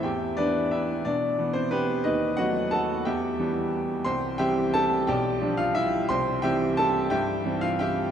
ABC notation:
X:1
M:3/4
L:1/8
Q:1/4=177
K:Ephr
V:1 name="Upright piano"
[Geg]2 [DBd]2 [EBe]2 | [Dd]3 [Cc] [B,GB]2 | [^DB^d]2 [^Fd^f]2 [Afa]2 | [Geg]4 z2 |
[K:C] [cgc']2 [Geg]2 [Aa]2 | [Gdg]3 [Ff] [Ee]2 | [cgc']2 [Geg]2 [Aa]2 | [Geg]3 [Ff] [Geg]2 |]
V:2 name="Upright piano" clef=bass
E,,2 [E,B,]4 | B,,2 [E,B,]4 | ^D,,2 [^F,A,B,]4 | E,,2 [E,G,B,]4 |
[K:C] C,,2 [E,G,C]4 | B,,,2 [F,G,D]4 | C,,2 [E,G,C]4 | G,,2 [E,G,C]4 |]